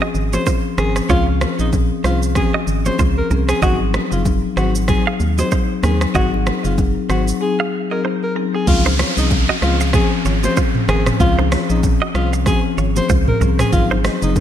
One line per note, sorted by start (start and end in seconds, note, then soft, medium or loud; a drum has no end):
0.00 0.28 F3 medium
0.00 0.29 C4 medium
0.00 0.29 C#4 medium
0.00 0.10 F#4 medium
0.00 0.29 G#4 loud
0.00 0.10 D#5 medium
0.15 0.38 G#1 medium
0.15 shaker soft
0.33 0.45 F3 medium
0.33 0.46 C4 medium
0.33 0.46 C#4 medium
0.33 0.42 F4 medium
0.33 0.46 G#4 medium
0.33 0.45 C5 medium
0.33 0.41 C#5 medium
0.33 low bongo medium
0.33 shaker medium
0.46 0.58 F4 medium
0.46 0.58 C5 medium
0.46 kick loud
0.46 high bongo medium
0.46 shaker medium
0.78 1.01 G#1 medium
0.78 0.95 F3 medium
0.78 0.95 C4 medium
0.78 0.95 C#4 medium
0.78 0.90 C#4 medium
0.78 0.95 G#4 medium
0.78 0.94 G#4 medium
0.78 0.89 A#4 medium
0.78 cross-stick medium
0.78 high bongo soft
0.78 low conga medium
0.78 shaker soft
0.96 1.05 C4 medium
0.96 1.04 G#4 medium
0.96 cross-stick medium
0.96 shaker medium
1.09 1.46 C#2 loud
1.09 1.55 F3 medium
1.09 1.55 C4 medium
1.09 1.55 C#4 medium
1.09 1.26 F4 loud
1.09 1.21 F4 medium
1.09 1.55 G#4 loud
1.09 1.21 C#5 medium
1.09 kick loud
1.09 low conga medium
1.09 shaker medium
1.41 1.53 C#4 medium
1.41 1.52 A#4 medium
1.41 cross-stick loud
1.41 low bongo medium
1.41 shaker soft
1.59 1.92 A#1 medium
1.59 1.72 F3 medium
1.59 1.72 C4 medium
1.59 1.72 C#4 medium
1.59 1.71 D#4 medium
1.59 1.72 G#4 medium
1.59 shaker medium
1.73 kick medium
1.73 high bongo medium
1.73 shaker medium
2.04 2.41 C2 medium
2.04 2.21 F3 medium
2.04 2.21 C4 medium
2.04 2.22 C#4 medium
2.04 2.16 D#4 medium
2.04 2.20 F4 medium
2.04 2.22 G#4 medium
2.04 2.15 C5 medium
2.04 cross-stick medium
2.04 shaker soft
2.23 shaker medium
2.35 2.81 F3 medium
2.35 2.81 C4 medium
2.35 2.81 C#4 medium
2.35 2.81 G#4 loud
2.35 2.52 G#4 medium
2.35 kick loud
2.35 cross-stick medium
2.35 low bongo medium
2.35 low conga medium
2.35 shaker medium
2.54 2.63 F#4 medium
2.54 2.62 D#5 medium
2.67 2.90 G#1 medium
2.67 shaker soft
2.85 2.98 F3 medium
2.85 2.98 C4 medium
2.85 2.98 C#4 medium
2.85 2.94 F4 medium
2.85 2.98 G#4 medium
2.85 2.97 C5 medium
2.85 2.94 C#5 medium
2.85 low bongo medium
2.85 shaker medium
2.99 3.22 C#2 loud
2.99 3.11 F4 medium
2.99 3.10 C5 medium
2.99 kick medium
2.99 high bongo medium
2.99 shaker medium
3.18 3.29 A#4 medium
3.30 3.54 C2 medium
3.30 3.48 F3 medium
3.30 3.48 C4 medium
3.30 3.48 C#4 medium
3.30 3.42 C#4 medium
3.30 3.48 G#4 medium
3.30 3.42 A#4 medium
3.30 high bongo soft
3.30 low conga medium
3.30 shaker soft
3.49 3.58 C4 medium
3.49 3.57 G#4 medium
3.49 3.60 G#4 medium
3.49 cross-stick loud
3.49 shaker medium
3.62 3.99 G#1 loud
3.62 4.08 F#3 medium
3.62 4.08 C4 medium
3.62 4.08 D#4 medium
3.62 3.78 F#4 loud
3.62 3.74 F#4 medium
3.62 4.08 G#4 loud
3.62 3.73 D#5 medium
3.62 kick loud
3.62 low conga medium
3.62 shaker medium
3.94 4.05 C#4 medium
3.94 4.05 A#4 medium
3.94 cross-stick loud
3.94 low bongo medium
3.94 shaker soft
4.12 4.45 F#1 medium
4.12 4.24 F#3 medium
4.12 4.25 C4 medium
4.12 4.25 D#4 medium
4.12 4.24 F4 medium
4.12 4.25 G#4 medium
4.12 shaker medium
4.25 kick medium
4.25 high bongo medium
4.25 shaker medium
4.57 4.93 G#1 loud
4.57 4.74 F#3 medium
4.57 4.74 C4 medium
4.57 4.74 D#4 medium
4.57 4.69 D#4 medium
4.57 4.73 F#4 medium
4.57 4.74 G#4 medium
4.57 4.68 C5 medium
4.57 cross-stick medium
4.57 shaker soft
4.75 shaker medium
4.88 5.34 F#3 medium
4.88 5.34 C4 medium
4.88 5.34 D#4 medium
4.88 5.34 G#4 loud
4.88 5.04 G#4 medium
4.88 kick loud
4.88 cross-stick medium
4.88 low bongo medium
4.88 low conga medium
4.88 shaker medium
5.07 5.16 G#4 medium
5.07 5.15 F5 medium
5.20 5.43 D#2 medium
5.20 shaker soft
5.38 5.51 F#3 medium
5.38 5.51 C4 medium
5.38 5.51 D#4 medium
5.38 5.47 F#4 medium
5.38 5.51 G#4 medium
5.38 5.50 C5 medium
5.38 5.47 D#5 medium
5.38 low bongo medium
5.38 shaker medium
5.51 5.63 D#4 medium
5.51 5.63 C5 medium
5.51 kick loud
5.51 high bongo medium
5.51 shaker medium
5.83 6.06 D#2 loud
5.83 6.00 F#3 medium
5.83 6.00 C4 medium
5.83 5.95 C#4 medium
5.83 6.01 D#4 medium
5.83 6.01 G#4 medium
5.83 5.99 G#4 medium
5.83 5.94 A#4 medium
5.83 cross-stick medium
5.83 high bongo soft
5.83 low conga medium
5.83 shaker medium
6.01 6.10 C4 medium
6.01 6.10 G#4 medium
6.01 cross-stick loud
6.01 shaker medium
6.15 6.51 G#1 loud
6.15 6.60 F#3 medium
6.15 6.60 C4 medium
6.15 6.60 D#4 medium
6.15 6.31 F#4 loud
6.15 6.27 F#4 medium
6.15 6.60 G#4 loud
6.15 6.26 D#5 medium
6.15 kick loud
6.15 low conga medium
6.15 shaker medium
6.34 high bongo medium
6.47 6.58 C#4 medium
6.47 6.58 A#4 medium
6.47 cross-stick loud
6.47 low bongo medium
6.47 shaker soft
6.64 6.97 F#1 medium
6.64 6.77 F#3 medium
6.64 6.77 C4 medium
6.64 6.77 D#4 medium
6.64 6.76 F4 medium
6.64 6.77 G#4 medium
6.64 shaker medium
6.78 kick medium
6.78 high bongo medium
6.78 shaker medium
7.09 7.33 G#1 medium
7.09 7.27 F#3 medium
7.09 7.27 C4 medium
7.09 7.27 D#4 medium
7.09 7.21 D#4 medium
7.09 7.25 F#4 medium
7.09 7.27 G#4 medium
7.09 7.21 C5 medium
7.09 cross-stick medium
7.09 shaker soft
7.28 shaker medium
7.41 7.86 F#3 medium
7.41 7.87 C4 medium
7.41 7.87 D#4 medium
7.41 7.87 G#4 loud
7.41 7.57 G#4 medium
7.60 7.68 G#4 medium
7.60 7.68 F5 medium
7.91 8.03 F#3 medium
7.91 8.03 C4 medium
7.91 8.04 D#4 medium
7.91 8.00 F#4 medium
7.91 8.04 G#4 medium
7.91 8.03 A#4 medium
7.91 7.99 D#5 medium
8.05 8.16 D#4 medium
8.05 8.15 C5 medium
8.23 8.34 A#4 medium
8.36 8.53 F#3 medium
8.36 8.53 C4 medium
8.36 8.48 C#4 medium
8.36 8.53 D#4 medium
8.36 8.53 G#4 medium
8.36 8.47 A#4 medium
8.54 8.63 C4 medium
8.54 8.62 G#4 medium
8.54 8.66 G#4 medium
8.67 9.04 C#2 loud
8.67 9.13 F3 medium
8.67 9.13 C4 medium
8.67 9.13 C#4 medium
8.67 8.83 F4 loud
8.67 9.13 G#4 loud
8.67 kick loud
8.67 crash loud
8.67 downlifter medium
8.67 low conga medium
8.67 shaker medium
8.86 8.94 D#4 medium
8.86 8.94 C5 medium
8.86 high bongo medium
8.99 9.11 F4 medium
8.99 9.10 C#5 medium
8.99 cross-stick loud
8.99 open hi-hat soft
8.99 low bongo medium
8.99 shaker soft
9.17 9.50 C2 medium
9.17 9.30 F3 medium
9.17 9.30 C4 medium
9.17 9.30 C#4 medium
9.17 9.29 D#4 medium
9.17 9.30 G#4 medium
9.17 shaker medium
9.31 kick medium
9.31 high bongo medium
9.31 shaker medium
9.49 9.58 F#4 medium
9.49 9.57 D#5 medium
9.62 9.99 C#2 medium
9.62 9.79 F3 medium
9.62 9.79 C4 medium
9.62 9.79 C#4 medium
9.62 9.78 F4 medium
9.62 9.80 G#4 medium
9.62 cross-stick medium
9.62 shaker soft
9.80 9.89 G#4 medium
9.80 9.89 F5 medium
9.80 shaker medium
9.93 10.39 F3 medium
9.93 10.39 C4 medium
9.93 10.39 C#4 medium
9.93 10.39 G#4 loud
9.93 10.10 G#4 medium
9.93 kick loud
9.93 cross-stick medium
9.93 low bongo medium
9.93 low conga medium
9.93 shaker medium
10.25 10.48 G#1 medium
10.25 10.37 F4 medium
10.25 10.37 C#5 medium
10.25 shaker medium
10.43 10.56 F3 medium
10.43 10.56 C4 medium
10.43 10.56 C#4 medium
10.43 10.56 G#4 medium
10.43 10.55 C5 medium
10.43 low bongo medium
10.43 shaker medium
10.57 10.69 F4 medium
10.57 10.68 C5 medium
10.57 kick loud
10.57 high bongo medium
10.57 shaker medium
10.75 mid tom medium
10.88 11.12 G#1 loud
10.88 11.06 F3 medium
10.88 11.06 C4 medium
10.88 11.06 C#4 medium
10.88 11.00 C#4 medium
10.88 11.06 G#4 medium
10.88 11.04 G#4 medium
10.88 11.00 A#4 medium
10.88 cross-stick loud
10.88 high bongo soft
10.88 low conga medium
10.88 shaker medium
11.06 11.15 C4 medium
11.06 11.15 G#4 medium
11.06 cross-stick loud
11.06 mid tom loud
11.06 shaker medium
11.20 11.56 C#2 loud
11.20 11.65 F3 loud
11.20 11.65 C4 medium
11.20 11.66 C#4 medium
11.20 11.36 F4 loud
11.20 11.66 G#4 loud
11.20 kick loud
11.20 low conga medium
11.20 shaker medium
11.39 11.47 D#4 medium
11.39 11.46 C5 medium
11.39 high bongo medium
11.52 11.63 F4 medium
11.52 11.63 C#5 medium
11.52 cross-stick loud
11.52 open hi-hat soft
11.52 low bongo medium
11.52 shaker soft
11.70 12.03 A#1 medium
11.70 11.82 F3 medium
11.70 11.82 C4 medium
11.70 11.82 C#4 medium
11.70 11.81 D#4 medium
11.70 11.83 G#4 medium
11.70 shaker medium
11.83 kick loud
11.83 high bongo medium
11.83 shaker medium
12.02 12.10 F#4 medium
12.02 12.10 D#5 medium
12.14 12.51 C2 medium
12.14 12.32 F3 medium
12.14 12.32 C4 medium
12.14 12.32 C#4 medium
12.14 12.31 F4 medium
12.14 12.32 G#4 medium
12.14 cross-stick medium
12.14 shaker soft
12.33 12.42 G#4 medium
12.33 12.41 F5 medium
12.33 shaker medium
12.46 12.92 F3 medium
12.46 12.92 C4 medium
12.46 12.92 C#4 medium
12.46 12.92 G#4 loud
12.46 12.62 G#4 medium
12.46 kick loud
12.46 cross-stick medium
12.46 low bongo medium
12.46 low conga medium
12.46 shaker medium
12.78 13.01 G#1 medium
12.78 12.90 F4 medium
12.78 12.89 C#5 medium
12.78 shaker soft
12.96 13.09 F3 medium
12.96 13.09 C4 medium
12.96 13.09 C#4 medium
12.96 13.09 G#4 medium
12.96 13.08 C5 medium
12.96 low bongo medium
12.96 shaker medium
13.09 13.33 C#2 medium
13.09 13.21 F4 medium
13.09 13.21 C5 medium
13.09 kick loud
13.09 high bongo medium
13.09 shaker medium
13.28 13.39 A#4 medium
13.28 mid tom medium
13.41 13.64 C2 medium
13.41 13.58 F3 medium
13.41 13.58 C4 medium
13.41 13.58 C#4 medium
13.41 13.53 C#4 medium
13.41 13.58 G#4 medium
13.41 13.52 A#4 medium
13.41 high bongo soft
13.41 low conga medium
13.41 shaker medium
13.59 13.68 C4 medium
13.59 13.68 G#4 medium
13.59 13.71 G#4 medium
13.59 cross-stick medium
13.59 mid tom loud
13.59 shaker medium
13.72 14.09 G#1 loud
13.72 14.18 F#3 medium
13.72 14.18 C4 medium
13.72 14.18 D#4 medium
13.72 13.88 F4 loud
13.72 14.18 G#4 loud
13.72 kick loud
13.72 low conga medium
13.72 shaker medium
13.91 14.00 D#4 medium
13.91 13.99 C5 medium
13.91 high bongo medium
14.04 14.16 F#4 medium
14.04 14.15 D#5 medium
14.04 cross-stick loud
14.04 open hi-hat soft
14.04 low bongo medium
14.04 shaker soft
14.22 14.40 F#1 loud
14.22 14.35 F#3 medium
14.22 14.35 C4 medium
14.22 14.35 D#4 medium
14.22 14.34 D#4 medium
14.22 14.35 G#4 medium
14.22 shaker medium
14.36 kick medium
14.36 high bongo medium
14.36 shaker medium